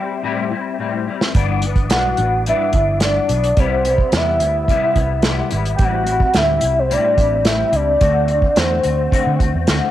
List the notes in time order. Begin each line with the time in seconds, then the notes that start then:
Already playing: G3 C4 E4 G5
0.23 A2 G3 C4 E4
0.50 G3 C4 E4
0.79 A2 G3 C4 E4
1.07 G3 C4 E4
1.21 snare
1.34 G1 G2 E3 B3 D4, kick, closed hi-hat
1.62 E3 B3 D4, closed hi-hat
1.76 kick, closed hi-hat
1.90 B1 G2 E3 B3 D4 F#5, snare, clap, closed hi-hat
2.17 A1 E3 B3 D4, closed hi-hat
2.46 G2 E3 B3 D4 E5, closed hi-hat
2.73 G1 E3 B3 D4, kick, closed hi-hat
3.00 G2 E3 B3 D4 D5, snare, clap, closed hi-hat
3.29 B1 E3 B3 D4, closed hi-hat
3.44 closed hi-hat
3.57 C2 C3 G3 B3 E4 C5, kick, closed hi-hat
3.85 G3 B3 E4, closed hi-hat
3.98 kick
4.12 E2 C3 G3 B3 E4, snare, clap, closed hi-hat
4.16 E5
4.40 D2 G3 B3 E4, closed hi-hat
4.68 C3 G3 B3 E4, kick, closed hi-hat
4.96 C2 G3 B3 E4, kick, closed hi-hat
5.22 C3 G3 B3 E4, snare, clap, closed hi-hat
5.51 G#1 G3 B3 E4, closed hi-hat
5.65 closed hi-hat
5.76 A1 G5, kick, closed hi-hat
5.80 A2 G3 C4 E4
5.84 F#5
6.06 G3 C4 E4, closed hi-hat
6.20 kick
6.33 D2 A2 G3 C4 E4 E5, snare, clap, closed hi-hat
6.61 C2 G3 C4 E4, closed hi-hat
6.79 C5
6.89 A2 G3 C4 E4 D5, closed hi-hat
7.17 A1 G3 C4 E4, kick, closed hi-hat
7.44 A2 G3 C4 E4 E5, snare, clap, closed hi-hat
7.71 C#2 G3 C4 E4, closed hi-hat
7.75 D5
8.00 D2 D3 A3 C4 F#4, kick, closed hi-hat
8.27 A3 C4 F#4, closed hi-hat
8.42 kick
8.55 E2 D3 A3 C4 F#4 C5, snare, clap, closed hi-hat
8.83 D2 A3 C4 F#4, closed hi-hat
9.11 D3 A3 C4 F#4, kick, closed hi-hat
9.27 D3
9.39 D2 A3 C4 F#4, kick, closed hi-hat
9.54 E2
9.67 D2 D3 A3 C4 F#4, snare, clap, closed hi-hat